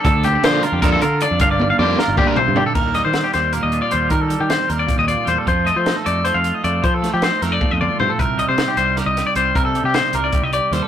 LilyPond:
<<
  \new Staff \with { instrumentName = "Clean electric guitar" } { \time 7/8 \key ees \lydian \tempo 4 = 154 a'8 g'8 c''8 bes'16 g'16 bes'16 a'16 bes'8 d''8 | f''16 d''8 f''16 d''8 bes'8 g'16 bes'16 c''8 g'16 a'16 | bes'8 ees''16 c''8 g'16 c''8 bes'16 ees''8 d''16 c''8 | bes'16 a'8 g'16 c''8 bes'16 d''8 ees''16 d''8 c''16 a'16 |
c''8 ees''16 c''8 a'16 d''8 c''16 f''8 ees''16 d''8 | c''16 a'8 g'16 c''8 bes'16 d''8 ees''16 d''8 c''16 a'16 | bes'8 ees''16 c''8 g'16 c''8 bes'16 ees''8 d''16 c''8 | bes'16 a'8 g'16 c''8 bes'16 d''8 ees''16 d''8 c''16 a'16 | }
  \new Staff \with { instrumentName = "Clean electric guitar" } { \time 7/8 \key ees \lydian << { a'8 c'16 d'16 g'16 bes'16 f'8 a'8 f'8 d'8 | <g d' f' bes'>8 d'8 g'8 f'2 | r4 c'4. d'16 f'8. | r4 c'4. f'4 |
r4 ees'4. f'4 | r4 ees'4. f'4 | r4 ees'4. g'4 | r4 ees'4. g'4 | } \\ { d2.~ d8 | g,2 bes,8 c8 d8 | ees8 g4 g8 bes,4 g8 | ees8 g4 g8 bes,4 g8 |
f8 a4 a8 f4 a8 | f8 a4 a8 f4 a8 | c8 g4 g8 g4 g8 | c8 g4 g8 g4 g8 | } >> }
  \new Staff \with { instrumentName = "Overdriven electric guitar" } { \clef bass \time 7/8 \key ees \lydian r4 <d f bes d'>8 r8 <d f bes d'>8 r4 | r4 <d g bes d'>8 r8 <d g bes d'>8 r4 | r2. r8 | r2. r8 |
r2. r8 | r2. r8 | r2. r8 | r2. r8 | }
  \new Staff \with { instrumentName = "Picked electric bass" } { \clef bass \time 7/8 \key ees \lydian d,4 d8 r16 f,8. d8. f,16 | g,,4 f,8 r16 g,,8 r8 g,8 r16 | ees,8. ees8 r16 ees,8. ees,8 r16 ees,8 | ees8. ees8 r16 ees,8 r16 ees,8 r16 e,16 r16 |
f,8. f8 r16 f,8. f,8 r16 f,8 | f8. f8 r16 f,8 r16 f,8 r16 g,16 r16 | c,8. c8 r16 c,8. c,8 r16 c,8 | c8. c8 r16 c,8 r16 c,8 r16 ees,16 r16 | }
  \new DrumStaff \with { instrumentName = "Drums" } \drummode { \time 7/8 <hh bd>8 hh8 <hh sn>8 hh8 <hh bd sn>8 hh8 hh8 | <hh bd>8 tommh8 tommh8 sn8 <bd toml>8 tomfh8 tomfh8 | <cymc bd>8 <hh sn>8 <hh sn>8 <hh sn>8 hh8 hh8 hh8 | <hh bd>8 hh8 <hh sn>8 hh8 <hh bd>8 hh8 hh8 |
<hh bd>8 hh8 <hh sn>8 hh8 hh8 hh8 hh8 | <hh bd>8 <hh sn>8 <hh sn>8 <hh sn>8 <bd tommh>8 toml8 tomfh8 | <hh bd>8 hh8 <hh sn>8 hh8 <hh sn>8 <hh sn>8 hh8 | <hh bd>8 hh8 <hh sn>8 hh8 <hh bd>8 hh8 <hh sn>8 | }
>>